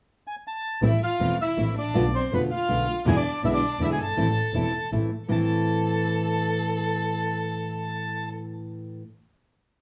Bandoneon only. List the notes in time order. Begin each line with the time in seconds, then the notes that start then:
0.27 G#5
0.47 A5
0.85 E5
1.04 F5
1.41 E5
1.78 D5
2.15 C5
2.34 B4
2.51 F5
3.08 G#5
3.17 D5
3.45 E5
3.54 D5
3.82 E5
3.93 G#5
4.02 A5
5.32 A5